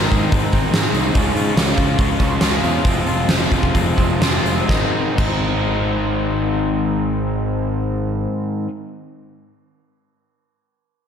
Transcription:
Already playing: overdriven electric guitar G#2 D#3 G#3 C4 D#4
0.11 picked electric bass G#1, overdriven electric guitar G#3 C4 D#4, kick, open hi-hat
0.31 picked electric bass G#1, overdriven electric guitar G#2 D#3 G#3 C4 D#4, kick, open hi-hat
0.53 picked electric bass G#1, overdriven electric guitar G#2 D#3 G#3 C4 D#4, kick, open hi-hat
0.71 picked electric bass G#1, overdriven electric guitar G#2 D#3, snare, open hi-hat
0.75 overdriven electric guitar G#3 C4 D#4
0.92 picked electric bass C2, overdriven electric guitar D#4, open hi-hat
0.97 overdriven electric guitar G#3 C4
1.15 picked electric bass C#2, overdriven electric guitar C#3 F3 G#3 C#4 F4, kick, open hi-hat
1.35 picked electric bass G#2, overdriven electric guitar C#4 F4, open hi-hat
1.40 overdriven electric guitar G#3
1.56 picked electric bass C#2, overdriven electric guitar C#3 G#3 C#4 F4, snare, open hi-hat
1.77 picked electric bass C#2, overdriven electric guitar G#3 C#4 F4, kick, open hi-hat
1.99 picked electric bass C#2, overdriven electric guitar C#3 G#3 C#4 F4, kick, open hi-hat
2.19 picked electric bass C#2, overdriven electric guitar C#3 F3 G#3 C#4, kick, open hi-hat
2.41 picked electric bass C#2, overdriven electric guitar C#3 F3 G#3 C#4 F4, snare, open hi-hat
2.63 picked electric bass E2, overdriven electric guitar G#3 C#4 F4, open hi-hat
2.84 picked electric bass F1, overdriven electric guitar F2 C3 F3 G#3 C4 F4, kick, open hi-hat
3.06 picked electric bass F1, overdriven electric guitar G#3 C4 F4, open hi-hat
3.28 picked electric bass F1, overdriven electric guitar F3 G#3 C4 F4, snare, open hi-hat
3.51 picked electric bass F1, overdriven electric guitar G#3 C4 F4, kick, open hi-hat
3.63 kick
3.74 picked electric bass F1, overdriven electric guitar F3 G#3 C4 F4, kick, open hi-hat
3.96 picked electric bass F1, overdriven electric guitar F2 C3 F3 G#3 C4, kick, open hi-hat
4.19 picked electric bass F1, overdriven electric guitar F2 C3 F3 G#3 C4 F4, snare, open hi-hat
4.43 picked electric bass F1, overdriven electric guitar G#3 C4 F4, open hi-hat
4.67 picked electric bass G#1, overdriven electric guitar G#2 D#3 G#3 C4, kick, snare
4.71 overdriven electric guitar D#4
5.16 picked electric bass G#1, overdriven electric guitar G#2 D#3 G#3 C4 D#4, kick, crash

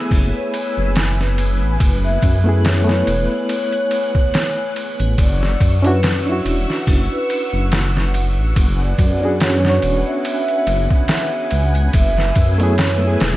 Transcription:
Already playing: reed electric piano A3 B3 E4 G#4, string machine B4 G#5 E6
0.11 detuned saw bass F#1, kick, open hi-hat, shaker
0.34 soft synth lead C#5, shaker
0.53 ride, shaker
0.77 detuned saw bass F#1, shaker
0.96 snare, ride, shaker
1.19 snare, shaker
1.38 ride, triangle, shaker
1.61 detuned saw bass A1, shaker
1.80 detuned saw bass F#1, string machine F#6, kick, ride, shaker
2.03 soft synth lead E5, shaker
2.21 detuned saw bass F#2, kick, ride, shaker
2.44 reed electric piano A3 B3 E4, shaker
2.49 reed electric piano G#4
2.65 soft synth lead C#5, snare, ride, shaker
2.84 reed electric piano A3 B3, shaker
2.89 reed electric piano E4, snare
2.93 reed electric piano B4
3.07 detuned saw bass E1, ride, shaker
3.30 soft synth lead C#5, shaker
3.49 ride, shaker
3.72 ride, shaker
3.91 ride, shaker
4.15 kick, shaker
4.33 snare, ride, shaker
4.58 shaker
4.76 ride, shaker
5.00 detuned saw bass A1, ride, triangle, shaker
5.18 detuned saw bass F#1, soft synth lead D5, string machine F#5 C#6 E6, kick, ride, shaker
5.42 snare, shaker
5.60 detuned saw bass F#2, kick, ride, shaker
5.82 reed electric piano C#4 D4 E4, soft synth lead B4, ride, triangle, shaker
5.87 reed electric piano F#4
6.03 snare, ride, shaker
6.23 reed electric piano C#4 D4
6.27 reed electric piano E4, shaker
6.32 reed electric piano F#4
6.45 detuned saw bass E1, ride, shaker
6.69 snare, shaker
6.87 detuned saw bass F#1, kick, open hi-hat, shaker
7.11 soft synth lead B4, shaker
7.29 ride, shaker
7.53 detuned saw bass F#1, shaker
7.72 snare, ride, shaker
7.96 snare, shaker
8.14 ride, triangle, shaker
8.37 detuned saw bass A1, shaker
8.55 detuned saw bass F#1, string machine B4 F#5 G#5, kick, ride, shaker
8.80 soft synth lead D5, shaker
8.98 detuned saw bass F#2, kick, ride, shaker
9.20 reed electric piano C#4 D4 F#4, shaker
9.25 reed electric piano G#4
9.40 soft synth lead C#5, snare, ride, shaker
9.60 reed electric piano C#4 D4
9.64 reed electric piano F#4, snare, shaker
9.69 reed electric piano C#5
9.82 detuned saw bass E1, ride, shaker
10.06 soft synth lead E5, shaker
10.25 ride, shaker
10.48 ride, shaker
10.67 detuned saw bass F#1, ride, shaker
10.91 kick, shaker
11.08 snare, ride, shaker
11.33 shaker
11.51 detuned saw bass C#2, ride, shaker
11.75 ride, triangle, shaker
11.93 detuned saw bass F#1, string machine B4 E6, soft synth lead E5, kick, ride, shaker
12.18 snare, shaker
12.35 detuned saw bass F#2, kick, ride, shaker
12.58 reed electric piano A3 B3 E4, soft synth lead C#5, ride, triangle, shaker
12.63 reed electric piano G#4
12.78 snare, ride, shaker
12.98 reed electric piano A3 B3
13.03 reed electric piano E4, shaker
13.07 reed electric piano G#4
13.20 detuned saw bass E1, snare, ride, shaker

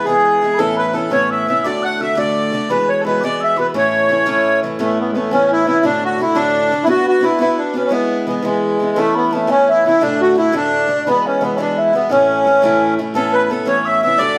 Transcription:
0.05 steel-string acoustic guitar E3 G#3 B3, accordion G#4, flute G#5
0.09 steel-string acoustic guitar E4
0.41 steel-string acoustic guitar E3 G#3 B3 E4
0.54 accordion A4, flute B5
0.59 steel-string acoustic guitar A2 E3 B3 C#4 E4, flute A5
0.77 accordion B4, flute B5
0.89 flute B5
0.93 steel-string acoustic guitar E3 B3 C#4 E4, accordion A4, flute A5
1.10 steel-string acoustic guitar A2 E3 B3 C#4 E4, accordion C#5, flute C#6
1.30 accordion E5, flute E6
1.47 steel-string acoustic guitar E3 B3 C#4 E4, accordion E5, flute E6
1.64 steel-string acoustic guitar D2 A2 D3 A3 D4 F#4, accordion D5, flute D6
1.83 accordion F#5, flute F#6
2.00 steel-string acoustic guitar D3 A3 D4 F#4, accordion E5, flute E6
2.15 steel-string acoustic guitar D2 A2 D3 A3 D4 F#4, accordion D5, flute D6
2.52 steel-string acoustic guitar D3 A3 D4 F#4
2.70 steel-string acoustic guitar E3 G#3 B3 F#4, accordion B4, flute B5
2.89 accordion C#5
3.00 accordion A4
3.05 steel-string acoustic guitar E3 G#3 B3 F#4, accordion B4, flute B5
3.21 steel-string acoustic guitar E3 G#3 B3 F#4, accordion D5, flute D6
3.40 accordion E5, flute E6
3.56 steel-string acoustic guitar E3 G#3 B3 F#4, accordion B4, flute B5
3.74 steel-string acoustic guitar A2 E3 A3 C#4 E4, accordion C#5, flute C#6
4.09 steel-string acoustic guitar E3 A3 C#4 E4
4.26 steel-string acoustic guitar A2 E3 A3 C#4 E4
4.63 steel-string acoustic guitar E3 A3 C#4 E4
4.79 steel-string acoustic guitar A2 E3 B3 C#4 E4, accordion A3
5.00 accordion B3
5.11 steel-string acoustic guitar E3, accordion G#3
5.15 accordion A3, steel-string acoustic guitar B3 C#4 E4
5.31 steel-string acoustic guitar A2 E3 B3 C#4 E4, accordion C#4
5.52 accordion E4
5.65 steel-string acoustic guitar E3 B3 C#4 E4, accordion E4
5.83 steel-string acoustic guitar A2 D3 A3 D4 F#4, accordion D4
6.05 accordion F#4
6.18 steel-string acoustic guitar D3 A3 D4 F#4, accordion E4
6.35 steel-string acoustic guitar A2 D3 A3 D4 F#4, accordion D4
6.71 steel-string acoustic guitar D3 A3 D4 F#4
6.84 steel-string acoustic guitar B3 D4, accordion E4
6.88 steel-string acoustic guitar F#4 B4, accordion F#4
7.08 accordion F#4
7.21 steel-string acoustic guitar B3 D4 F#4 B4, accordion E4
7.39 steel-string acoustic guitar B3 D4 F#4 B4, accordion E4
7.58 accordion D4
7.74 steel-string acoustic guitar B3 D4 F#4 B4, accordion C#4
7.84 accordion C#4
7.89 steel-string acoustic guitar E3 G#3 B3 E4, accordion B3
8.27 steel-string acoustic guitar E3 G#3 B3 E4, accordion B3
8.42 steel-string acoustic guitar E3 G#3 B3 E4, accordion G#3
8.79 steel-string acoustic guitar E3 G#3 B3 E4
8.96 steel-string acoustic guitar A2 E3 B3 C#4 E4, accordion A3, flute A5
9.15 accordion B3, flute B5
9.31 steel-string acoustic guitar E3 B3 C#4, flute A5
9.35 accordion A3, steel-string acoustic guitar E4
9.47 steel-string acoustic guitar A2 E3 B3 C#4 E4, accordion C#4, flute C#5
9.68 accordion E4, flute E5
9.85 steel-string acoustic guitar E3 B3 C#4 E4, accordion E4
10.01 steel-string acoustic guitar D2 A2 D3 A3 D4 F#4, accordion D4, flute D5
10.21 accordion F#4, flute F#5
10.36 steel-string acoustic guitar D3 A3 D4, accordion E4, flute E5
10.40 steel-string acoustic guitar F#4
10.52 steel-string acoustic guitar D2 A2 D3 A3 D4 F#4, flute D5
10.56 accordion D4
10.88 steel-string acoustic guitar D3 A3 D4 F#4
11.06 steel-string acoustic guitar E3 G#3 B3 F#4, accordion B3, flute B5
11.27 accordion C#4, flute C#5
11.41 steel-string acoustic guitar E3 G#3 B3 F#4, accordion B3, flute B5
11.55 steel-string acoustic guitar E3 G#3, accordion C#4, flute D5
11.60 steel-string acoustic guitar B3 F#4, accordion D4
11.77 accordion E4, flute E5
11.93 steel-string acoustic guitar E3 G#3 B3 F#4, accordion B3
12.09 steel-string acoustic guitar A2 E3 A3 C#4 E4, accordion C#4, flute C#5
12.45 steel-string acoustic guitar E3 A3 C#4 E4
12.62 steel-string acoustic guitar A2 E3 A3 C#4 E4
12.99 steel-string acoustic guitar E3 A3 C#4 E4
13.14 steel-string acoustic guitar A2 E3 B3 C#4 E4, accordion A4, flute A5
13.33 accordion B4, flute B5
13.50 steel-string acoustic guitar E3 B3 C#4 E4, accordion A4, flute A5
13.65 steel-string acoustic guitar A2 E3 B3 C#4 E4, accordion C#5, flute C#6
13.85 accordion E5, flute E6
14.02 steel-string acoustic guitar E3 B3 C#4, accordion E5, flute E6
14.07 steel-string acoustic guitar E4
14.18 steel-string acoustic guitar A2 D3 A3 D4 F#4, accordion D5, flute D6

